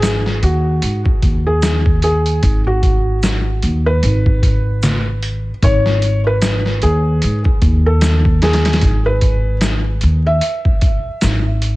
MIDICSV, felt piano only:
0, 0, Header, 1, 2, 480
1, 0, Start_track
1, 0, Tempo, 800000
1, 1455, Time_signature, 4, 2, 24, 8
1, 7057, End_track
2, 0, Start_track
2, 0, Title_t, "Felt piano"
2, 0, Program_c, 0, 0
2, 0, Note_on_c, 0, 68, 83
2, 228, Note_off_c, 0, 68, 0
2, 261, Note_on_c, 0, 66, 82
2, 596, Note_off_c, 0, 66, 0
2, 879, Note_on_c, 0, 68, 81
2, 1187, Note_off_c, 0, 68, 0
2, 1222, Note_on_c, 0, 68, 87
2, 1556, Note_off_c, 0, 68, 0
2, 1601, Note_on_c, 0, 66, 85
2, 1908, Note_off_c, 0, 66, 0
2, 2318, Note_on_c, 0, 71, 86
2, 3297, Note_off_c, 0, 71, 0
2, 3383, Note_on_c, 0, 73, 102
2, 3717, Note_off_c, 0, 73, 0
2, 3760, Note_on_c, 0, 71, 85
2, 4068, Note_off_c, 0, 71, 0
2, 4096, Note_on_c, 0, 68, 88
2, 4433, Note_off_c, 0, 68, 0
2, 4718, Note_on_c, 0, 69, 87
2, 5027, Note_off_c, 0, 69, 0
2, 5059, Note_on_c, 0, 68, 92
2, 5395, Note_off_c, 0, 68, 0
2, 5435, Note_on_c, 0, 71, 83
2, 5745, Note_off_c, 0, 71, 0
2, 6159, Note_on_c, 0, 76, 87
2, 7057, Note_off_c, 0, 76, 0
2, 7057, End_track
0, 0, End_of_file